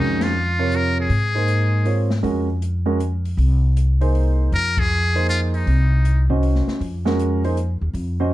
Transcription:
Already playing: F2 D#3 G#3 C#4 D#4 F#4 A#4
0.21 F4, snare, ride
0.59 C3 F4 A#4 C#5
0.72 closed hi-hat
0.76 A#4
1.00 G#4
1.09 G#2, open hi-hat
1.35 A#3 D#4 G#4 C5
1.48 closed hi-hat
1.85 C4 F4 A#4 C#5, open hi-hat
2.10 snare
2.23 F2 G#3 C#4 F#4 A#4, open hi-hat
2.62 closed hi-hat
2.86 G#3 C#4 F#4 A#4
3.00 closed hi-hat
3.25 open hi-hat
3.37 C2, open hi-hat
3.77 closed hi-hat
4.01 A#3 D#4 G#4 C5, open hi-hat
4.15 open hi-hat
4.52 F2 A#4, open hi-hat
4.77 G#4, kick, ride
5.15 A#3 D#4 G#4 C5, open hi-hat
5.29 F4, closed hi-hat
5.54 D#4, open hi-hat
5.66 C2, open hi-hat
6.05 closed hi-hat
6.30 C#4 F#4 C5 D#5, kick
6.43 open hi-hat
6.55 snare
6.67 muted upright bass stroke, snare
6.80 F2, open hi-hat
7.05 G#3 C#4 F#4 A#4, snare
7.19 closed hi-hat
7.44 A#3 D#4 G#4 C5, open hi-hat
7.57 closed hi-hat
7.81 D#2
7.93 F2, open hi-hat
8.20 C#4 F#4 C5 D#5

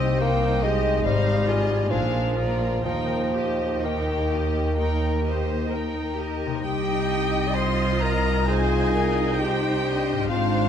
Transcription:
Already playing: C2 C3 C4 D#4 G4 D#5
0.21 A#3 D#4 C5 G5
0.62 G#3 D#4 G4 D#5
1.04 G#1 G#2 G3 D#4 C5 F5
1.46 F4 G#4 C5 D#5
1.90 A#1 A#2 F3 D4 G#4 F5
2.36 F4 G#4 A#4 D5
2.85 D#2 D#3 F3 D#4 A#4 G5
3.34 D#4 G4 D#5
3.82 D#3 D#4 G4 A#4 G5
4.31 D#4 G4 D#5
4.76 A#3 D#4 A#4 G5
5.24 D#4 G4 C5 D#5
5.69 D#4 A#4
5.74 G5
6.16 D#4 G4 D#5
6.46 C3
6.50 D#4
6.55 C5
6.63 C2 D#4 G4 D#5 G5
7.48 D5
7.54 F4 C5 D#5 C6
8.01 A#4 A#5
8.47 D#4 F4 G#4 C5 D#5 G#5
8.94 A#4
9.38 D#4 G4 C5 G5
9.82 D4 D#5
10.12 G#2
10.16 D#4
10.21 F4
10.25 C4 C5
10.30 G#1 G#2 D4 F4 C5 F5

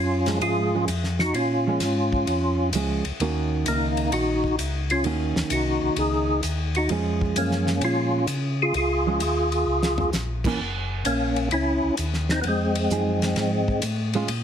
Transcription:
Already playing: F#2 C#4 F4
0.26 F3 G#3 C#4, snare, ride
0.41 G#2 F4 G#4, ride
0.75 F3 G#3 C#4
0.88 F2, hi-hat pedal, ride
1.04 snare
1.19 D#4 F#4, snare
1.34 A#2 C#4 F4, ride
1.67 F3 G#3 C#4
1.80 G#2, snare, hi-hat pedal, ride
2.13 kick
2.27 F2, ride
2.73 C#2 F3 G#3 C#4, hi-hat pedal, ride
3.04 C#2, ride
3.20 D#2 D#3 A#3 C#4 F#4, ride
3.66 C#2 A#3 D#4, hi-hat pedal, ride
3.97 ride
4.12 A#1 D#4 F#4, ride
4.44 kick
4.58 C#2, hi-hat pedal, ride
4.90 C#4 F4, ride
5.04 D#2 D#3 A#3 C#4 F#4, ride
5.36 D#2, snare
5.50 C2 D#4 F#4, hi-hat pedal, ride
5.82 C2
5.96 C#2 D#4 G#4, ride
6.43 D#2, hi-hat pedal, ride
6.75 D#4 F#4, ride
6.89 F2 F3 G#3 C#4, ride
7.21 kick
7.36 F#2 A#3 C#4, hi-hat pedal, ride
7.51 snare
7.67 snare
7.81 A#2 C#4 F4, ride
8.27 C#3, hi-hat pedal, ride
8.62 F4 G#4
8.74 C#2 F4 G#4, ride
9.07 F3 G#3 C#4
9.20 D#2, hi-hat pedal, ride
9.52 ride
9.66 C#2
9.83 snare
9.98 floor tom
10.12 A#1, snare, hi-hat pedal
10.44 E3 A#3 C#4, kick, crash
10.59 F#1
11.05 A#1 A#3 C#4, hi-hat pedal, ride
11.36 ride
11.51 C#2 C#4 E4, ride
11.84 C#2
11.97 D#2, hi-hat pedal, ride
12.13 snare
12.29 C4 D#4, snare
12.42 F2 B3, ride
12.47 G#3 C4
12.75 ride
12.90 F#2 F3 D#4 G#4, hi-hat pedal
13.22 snare, ride
13.36 G#2, snare, ride
13.68 kick
13.82 A2, hi-hat pedal, ride
14.13 G#3 C#4 F4, ride
14.28 A#2, ride

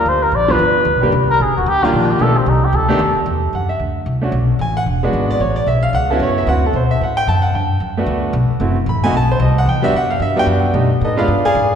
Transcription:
Already playing: A#4
0.06 D2 C5
0.23 A#4
0.32 A#1 D5
0.48 F3 G3 B3 D4 F4 B4
0.59 G1
0.85 D2
0.94 B1
1.01 G1 D#3 G3 A#3 D4 G4
1.12 C2
1.30 A#4
1.40 A#1 G#4
1.48 G1
1.57 D#1 F#4
1.66 D2 G4
1.83 D#3 G3 A#3 D4 F4
1.93 A#1 D4
2.11 G4
2.19 B1 D#3 A3 B3 D4 G4 A4
2.37 C4
2.46 C2 D#4
2.65 G4
2.73 D2 A4
2.88 D#3 A3 B3 D4 G4
2.99 D#2
3.16 muted upright bass stroke
3.26 E2
3.53 F#2 F#5
3.69 E5
3.80 D2
4.06 C2
4.21 A3 C#4 D4 F#4
4.32 B1
4.59 A1 G#5
4.77 F#5
4.86 E1
5.03 G#3 B3 D4 F#4
5.13 G#1
5.31 D5
5.40 A1 C#5
5.56 D5
5.66 B1 E5
5.83 F5
5.93 C#2 F#5
6.10 B3 C#4 E4 F#4 A4
6.19 F#2 C#5
6.38 E5
6.47 D2 B3 C4 E4 F#4 F#5
6.66 A4
6.73 B2 C5
6.91 E5
7.01 A2 F#5
7.17 G5
7.27 F#2 A5
7.42 F#5
7.54 G2 G5
7.80 F#2
7.97 A3 B3 D4 F#4
8.06 D2
8.33 B1
8.50 muted upright bass stroke
8.60 F#1 A3 C4 E4 F#4
8.86 A1 B5
9.04 A3 C4 D#4 F#4 G#5
9.13 B1
9.17 A5
9.32 C5
9.40 C2 D#5
9.58 F#5
9.66 E2 G5
9.82 G3 B3 D4 F#4 E5
9.93 F#2 F#5
10.10 F5
10.20 G2 E5
10.36 G3 B3 D4 F#4 G5
10.46 F#2
10.73 B2 G3 A3 D4 D#4
11.01 A2 D#4 A4 B4 D#5
11.17 G#3 B3 D4 F4 B4 D5 F5
11.28 G2
11.45 G#4 D5 F5 G#5
11.55 G#2

